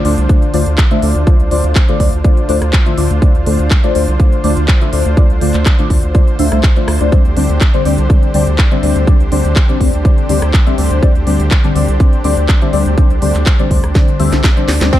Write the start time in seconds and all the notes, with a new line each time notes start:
Already playing: D3 D4 F4 C5
0.05 D2 D3 A3 D4 F4 C5 D5, open hi-hat
0.18 C2, closed hi-hat
0.29 D3 A3 D4 F4 C5 D5, kick, closed hi-hat
0.42 closed hi-hat
0.54 D2 D3 A3 D4 F4 C5 D5, open hi-hat
0.67 D2, closed hi-hat
0.78 kick, clap, closed hi-hat
0.91 D3 A3 D4 F4 C5 E5, closed hi-hat
1.02 D2 D3 A3 D4 F4 C5 D5, open hi-hat
1.15 D2, closed hi-hat
1.27 D3 A3 D4 F4 C5 D5, kick, closed hi-hat
1.40 C2, closed hi-hat
1.51 D2 D3 A3 D4 F4 C5 D5, open hi-hat
1.64 D2, closed hi-hat
1.75 kick, clap, closed hi-hat
1.88 D3 A3 D4 F4 C5 D5, closed hi-hat
2.00 D2 D3 A3 D4 F4 C5 D5, kick, open hi-hat
2.13 D2, closed hi-hat
2.24 D3 A3 D4 F4 C5 D5, kick, closed hi-hat
2.37 closed hi-hat
2.49 D2 D3 A3 D4 F4 C5 D5, open hi-hat
2.62 D2, cross-stick, closed hi-hat
2.73 kick, clap, closed hi-hat
2.86 D3 A3 D4 F4 C5 E5, closed hi-hat
2.98 D2 D3 A3 D4 F4 C5 D5, open hi-hat
3.11 D2, closed hi-hat
3.22 D3 A3 D4 F4 C5 D5, kick, closed hi-hat
3.35 D2, closed hi-hat
3.46 D2 D3 A3 D4 F4 C5 D5, open hi-hat
3.59 D2, closed hi-hat
3.71 kick, clap, closed hi-hat
3.84 D3 A3 D4 F4 C5 D5, closed hi-hat
3.95 D2 D3 A3 D4 F4 C5 D5, open hi-hat
4.08 C2, closed hi-hat
4.19 D3 A3 D4 F4 C5 D5, kick, closed hi-hat
4.32 closed hi-hat
4.44 D2 D3 A3 D4 F4 C5 D5, open hi-hat
4.57 D2, closed hi-hat
4.68 kick, clap, closed hi-hat
4.81 D3 A3 D4 F4 C5 E5, closed hi-hat
4.93 D2 D3 A3 D4 F4 C5 D5, open hi-hat
5.06 D2, closed hi-hat
5.17 D3 A3 D4 F4 C5 D5, kick, closed hi-hat
5.30 C2, closed hi-hat
5.41 D2 D3 A3 D4 F4 C5 D5, open hi-hat
5.54 D2, clap, closed hi-hat
5.66 kick, clap, closed hi-hat
5.79 D3 A3 D4 F4 C5 D5, closed hi-hat
5.90 D2 D3 A3 D4 F4 C5 D5, kick, open hi-hat
6.03 D2, closed hi-hat
6.15 D3 A3 D4 F4 C5 D5, kick, closed hi-hat
6.28 closed hi-hat
6.39 D2 D3 A3 D4 F4 C5 E5, open hi-hat
6.52 C2 D3 A3 D4 F4 C5 E5, cross-stick, closed hi-hat
6.63 kick, clap, closed hi-hat
6.76 D3 A3 D4 F4 C5 D5, closed hi-hat
6.88 D2, cross-stick, open hi-hat
7.01 D2 A3 D4 F4 C5 D5, closed hi-hat
7.12 D3 G3 C4 D4 G4 C5 D5, kick, closed hi-hat
7.25 D2, closed hi-hat
7.37 D2 D3 G3 C4 D4 C5 D5, open hi-hat
7.49 D2, closed hi-hat
7.61 kick, clap, closed hi-hat
7.74 D3 G3 C4 D4 C5 D5, closed hi-hat
7.85 D2 D3 G3 C4 D4 C5 D5, open hi-hat
7.98 C2, closed hi-hat
8.10 D3 G3 C4 D4 C5 D5, kick, closed hi-hat
8.23 closed hi-hat
8.34 D2 D3 G3 C4 D4 C5 D5, open hi-hat
8.47 D2, closed hi-hat
8.58 kick, clap, closed hi-hat
8.71 D3 G3 C4 D4 C5 E5, closed hi-hat
8.83 D2 D3 G3 C4 D4 C5 D5, open hi-hat
8.96 D2, closed hi-hat
9.07 D3 G3 C4 D4 C5 D5, kick, closed hi-hat
9.20 C2, closed hi-hat
9.32 D2 D3 G3 C4 D4 C5 D5, open hi-hat
9.45 D2, closed hi-hat
9.56 kick, clap, closed hi-hat
9.69 D3 G3 C4 D4 C5 D5, closed hi-hat
9.81 D2 D3 G3 C4 D4 C5 D5, kick, open hi-hat
9.93 D2, closed hi-hat
10.05 D3 G3 C4 D4 C5 D5, kick, closed hi-hat
10.18 closed hi-hat
10.29 D2 D3 G3 C4 D4 C5 D5, open hi-hat
10.42 D2, cross-stick, closed hi-hat
10.54 kick, clap, closed hi-hat
10.67 D3 G3 C4 D4 C5 E5, closed hi-hat
10.78 D2 D3 G3 C4 D4 C5 D5, open hi-hat
10.91 D2, closed hi-hat
11.02 D3 G3 C4 D4 C5 D5, kick, closed hi-hat
11.15 D2, closed hi-hat
11.27 D2 D3 G3 C4 D4 C5 D5, open hi-hat
11.40 D2, closed hi-hat
11.51 kick, clap, closed hi-hat
11.64 D3 G3 C4 D4 C5 D5, closed hi-hat
11.75 D2 D3 G3 C4 D4 C5 D5, open hi-hat
11.89 C2, closed hi-hat
12.00 D3 G3 C4 D4 C5 D5, kick, closed hi-hat
12.13 closed hi-hat
12.24 D2 D3 G3 C4 D4 C5 D5, open hi-hat
12.37 D2, closed hi-hat
12.49 kick, clap, closed hi-hat
12.62 D3 G3 C4 D4 C5 E5, closed hi-hat
12.73 D2 D3 G3 C4 D4 C5 D5, open hi-hat
12.86 D2, closed hi-hat
12.98 D3 G3 C4 D4 C5 D5, kick, closed hi-hat
13.10 C2, closed hi-hat
13.22 D2 D3 G3 C4 D4 C5 D5, open hi-hat
13.35 D2, clap, closed hi-hat
13.46 kick, clap, closed hi-hat
13.59 D3 G3 C4 D4 C5 D5, closed hi-hat
13.71 D2 D3 G3 C4 D4 C5 D5, kick, open hi-hat
13.84 D2, cross-stick, closed hi-hat
13.95 D3 G3 C4 D4 C5 D5, kick, snare, closed hi-hat
14.08 closed hi-hat
14.19 D2 D3 G3 C4 D4 C5 E5, open hi-hat
14.32 C2 D3 G3 C4 D4 C5 E5, snare, closed hi-hat
14.44 kick, snare, clap, closed hi-hat
14.57 D3 G3 C4 D4 C5 D5, closed hi-hat
14.68 D2, snare, open hi-hat
14.81 D2 G3 C4 D4 C5 D5, snare, closed hi-hat
14.93 D3 A3 C4 D4 F4 C5 D5, kick, closed hi-hat, crash